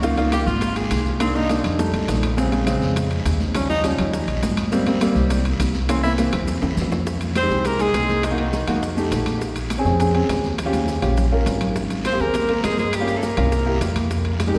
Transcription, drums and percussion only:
0.03 high bongo, long guiro, maracas
0.17 high bongo, high conga, high timbale, maracas
0.32 high bongo, high conga, high timbale, short guiro, maracas
0.47 high bongo, short guiro, maracas
0.61 high bongo, high conga, high timbale, long guiro, maracas
0.76 high conga, high timbale, maracas
0.91 high bongo, low bongo, high conga, high timbale, short guiro, maracas
1.05 high bongo, high conga, short guiro, maracas
1.20 high bongo, high conga, high timbale, long guiro, maracas
1.35 high bongo, high conga, maracas
1.49 high bongo, high conga, high timbale, short guiro, maracas
1.64 high bongo, high conga, low conga, high timbale, short guiro, maracas
1.79 high bongo, high conga, long guiro, maracas
1.94 high bongo, high conga, high timbale, maracas
2.08 high bongo, low bongo, high conga, high timbale, low timbale, short guiro, maracas
2.23 high conga, high timbale, short guiro, maracas
2.38 high bongo, high conga, long guiro, maracas
2.52 high bongo, high conga, high timbale, maracas
2.67 high bongo, high conga, high timbale, short guiro, maracas
2.82 high bongo, short guiro, maracas
2.96 high bongo, high conga, high timbale, long guiro, maracas
3.11 high conga, high timbale, maracas
3.26 high bongo, low bongo, high conga, high timbale, short guiro, maracas
3.40 high bongo, high conga, short guiro, maracas
3.55 high bongo, high conga, high timbale, long guiro, maracas
3.70 high bongo, high conga, maracas
3.84 high bongo, high conga, high timbale, short guiro, maracas
3.99 high bongo, high conga, low conga, high timbale, short guiro, maracas
4.14 high bongo, high conga, long guiro, maracas
4.28 high bongo, high conga, high timbale, maracas
4.43 high bongo, low bongo, high conga, high timbale, low timbale, short guiro, maracas
4.57 high conga, high timbale, short guiro, maracas
4.72 high bongo, high conga, long guiro, maracas
4.87 high bongo, high conga, high timbale, maracas
5.01 high bongo, high conga, high timbale, short guiro, maracas
5.16 high bongo, short guiro, maracas
5.30 high bongo, high conga, high timbale, long guiro, maracas
5.45 high conga, high timbale, maracas
5.60 high bongo, low bongo, high conga, high timbale, short guiro, maracas
5.74 high bongo, high conga, short guiro, maracas
5.89 high bongo, high conga, high timbale, long guiro, maracas
6.04 high bongo, high conga, maracas
6.18 high bongo, high conga, high timbale, short guiro, maracas
6.33 high bongo, high conga, low conga, high timbale, short guiro, maracas
6.47 high bongo, high conga, long guiro, maracas
6.62 low bongo, high conga, high timbale, maracas
6.77 low bongo, high conga, short guiro, maracas
6.81 low timbale
6.92 low bongo, high conga, low timbale, short guiro, maracas
7.06 high bongo, long guiro, maracas
7.21 high bongo, high conga, high timbale, maracas
7.36 high bongo, high conga, high timbale, low timbale, short guiro, maracas
7.50 high conga, short guiro, maracas
7.65 high bongo, high conga, high timbale, long guiro, maracas
7.80 high bongo, high conga, high timbale, maracas
7.94 high bongo, low bongo, high conga, high timbale, low timbale, short guiro, maracas
8.09 high bongo, high conga, short guiro, maracas
8.23 high bongo, high conga, high timbale, long guiro, maracas
8.38 high bongo, high conga, high timbale
8.53 high bongo, high conga, low timbale, short guiro, maracas
8.68 high conga, high timbale, short guiro, maracas
8.82 high bongo, high conga, long guiro, maracas
8.97 high bongo, high conga, maracas
9.12 high bongo, low bongo, high conga, high timbale, low timbale, short guiro, maracas
9.26 high conga, high timbale, short guiro, maracas
9.41 high bongo, high conga, long guiro, maracas
9.56 high bongo, high conga, high timbale, maracas
9.70 high bongo, high conga, high timbale, low timbale, short guiro, maracas
9.85 high conga, short guiro, maracas
10.00 high bongo, high conga, high timbale, long guiro, maracas
10.15 high bongo, high conga, high timbale
10.29 high bongo, low bongo, high conga, high timbale, low timbale, short guiro, maracas
10.44 high bongo, high conga, short guiro, maracas
10.58 high bongo, high conga, high timbale, long guiro, maracas
10.73 high bongo, high conga, high timbale, maracas
10.88 high bongo, high conga, low timbale, short guiro, maracas
11.02 high conga, high timbale, short guiro, maracas
11.17 high bongo, low conga, long guiro, maracas
11.32 high bongo, low conga
11.46 high bongo, low bongo, low conga, high timbale, low timbale, short guiro, maracas
11.61 low conga, high timbale, short guiro, maracas
11.76 high bongo, high conga, long guiro, maracas
11.90 high bongo, high conga, high timbale, maracas
12.05 high bongo, high conga, high timbale, low timbale, short guiro, maracas
12.20 short guiro, maracas
12.34 high bongo, high conga, high timbale, long guiro, maracas
12.49 high bongo, high conga, high timbale
12.64 high bongo, low bongo, high conga, high timbale, low timbale, short guiro, maracas
12.78 high bongo, high conga, short guiro, maracas
12.93 high bongo, high conga, high timbale, long guiro, maracas
13.08 high bongo, high conga, high timbale, maracas
13.23 high bongo, high conga, low timbale, short guiro, maracas
13.37 high conga, high timbale, short guiro, maracas
13.52 high bongo, high conga, long guiro, maracas
13.67 high bongo, high conga
13.81 high bongo, low bongo, high conga, high timbale, low timbale, short guiro, maracas
13.96 high conga, high timbale, short guiro, maracas
14.11 high bongo, high conga, long guiro, maracas
14.25 high bongo, high conga, high timbale
14.40 high bongo, high conga, high timbale, low timbale, short guiro, maracas
14.54 high conga, short guiro, maracas

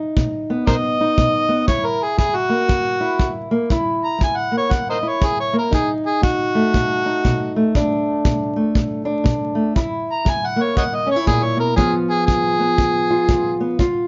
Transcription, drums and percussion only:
0.17 kick
0.67 kick
1.18 kick
1.68 kick
2.19 kick
2.69 kick
3.20 kick
3.70 kick
4.21 kick
4.71 kick
5.22 kick
5.73 kick
6.23 kick
6.74 kick
7.25 kick
7.75 kick
8.25 kick
8.75 kick
9.26 kick
9.76 kick
10.26 kick
10.77 kick
11.27 kick
11.78 kick
12.28 kick
12.78 kick
13.29 kick
13.79 kick

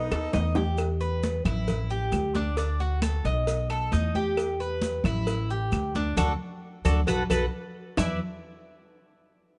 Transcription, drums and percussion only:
0.11 cowbell, high bongo, high conga, claves, maracas
0.33 cowbell, low bongo, high conga, maracas
0.55 low bongo, high conga, maracas
0.78 cowbell, claves, maracas
1.01 high conga, maracas
1.23 cowbell, high conga, maracas
1.45 cowbell, low conga, claves, maracas
1.68 cowbell, high conga, low conga, maracas
1.90 high conga, maracas
2.12 cowbell, high conga, claves, maracas
2.35 cowbell, high conga, maracas
2.57 cowbell, high conga, maracas
2.80 high conga, maracas
3.02 cowbell, high conga, claves, maracas
3.25 cowbell, high conga, maracas
3.47 cowbell, high conga, maracas
3.70 cowbell, high conga, claves, maracas
3.92 cowbell, high conga, maracas
4.15 high conga, maracas
4.37 cowbell, high conga, claves, maracas
4.60 high conga, maracas
4.82 cowbell, high conga, maracas
5.04 cowbell, low conga, claves, maracas
5.27 cowbell, high conga, maracas
5.50 high conga, maracas
5.72 cowbell, high conga, claves, maracas
5.95 cowbell, high conga, maracas
6.17 cowbell, low conga, claves, maracas
6.85 cowbell, low conga, claves, maracas
7.07 cowbell, low conga, claves, maracas
7.30 cowbell, low conga, claves, maracas
7.97 low bongo, low conga, claves, maracas

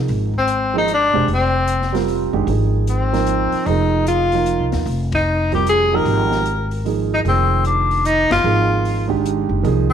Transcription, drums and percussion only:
0.08 open hi-hat
0.34 kick
0.48 closed hi-hat
0.88 closed hi-hat
1.28 open hi-hat
1.67 closed hi-hat
1.82 snare
1.95 snare, open hi-hat
2.08 open hi-hat
2.48 open hi-hat
2.87 closed hi-hat
3.14 snare, open hi-hat
3.26 closed hi-hat
3.52 open hi-hat
3.66 open hi-hat
4.07 closed hi-hat
4.32 open hi-hat
4.46 closed hi-hat
4.72 snare, open hi-hat
4.87 open hi-hat
5.12 kick, ride
5.52 kick, open hi-hat
5.67 closed hi-hat
6.06 open hi-hat
6.31 snare
6.45 closed hi-hat
6.71 open hi-hat
6.86 open hi-hat
7.25 open hi-hat
7.64 closed hi-hat
7.91 open hi-hat
8.05 closed hi-hat
8.31 snare, ride
8.85 open hi-hat
9.10 kick
9.26 closed hi-hat
9.65 open hi-hat
9.90 kick

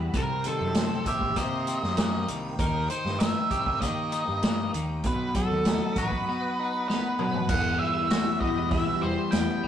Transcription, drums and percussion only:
0.14 kick, closed hi-hat, tambourine
0.44 closed hi-hat, tambourine
0.74 snare, closed hi-hat, tambourine
1.06 kick, closed hi-hat, tambourine
1.21 kick
1.36 kick, closed hi-hat, tambourine
1.67 closed hi-hat, tambourine
1.83 snare
1.97 snare, closed hi-hat, tambourine
2.28 closed hi-hat
2.59 kick, closed hi-hat, tambourine
2.90 closed hi-hat, tambourine
3.06 snare
3.20 snare, closed hi-hat, tambourine
3.51 kick, closed hi-hat, tambourine
3.66 kick
3.82 kick, closed hi-hat, tambourine
4.12 closed hi-hat, tambourine
4.42 snare, closed hi-hat, tambourine
4.74 closed hi-hat, tambourine
5.04 kick, closed hi-hat, tambourine
5.35 kick, closed hi-hat, tambourine
5.65 snare, closed hi-hat, tambourine
5.96 kick, closed hi-hat, tambourine
6.11 kick
6.89 snare
7.19 mid tom
7.34 floor tom
7.49 kick, crash
8.10 snare, open hi-hat, tambourine
8.41 kick
8.71 kick, open hi-hat
9.32 snare, open hi-hat, tambourine

